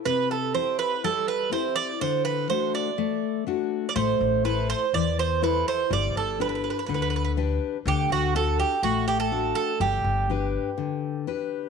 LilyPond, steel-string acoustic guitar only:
\new Staff \with { instrumentName = "Steel-string acoustic guitar" } { \time 4/4 \key g \major \tempo 4 = 123 c4 <c' e' g'>4 g4 <c' e' g'>4 | d4 <a d' fis'>4 a4 <a d' fis'>4 | a4 <e' a' c''>4 e4 <e' a' c''>4 | g4 <d' g' b'>4 d4 <d' g' b'>4 |
d4 <d' fis' a'>4 a4 <d' fis' a'>4 | g4 <d' g' b'>4 d4 <d' g' b'>4 | }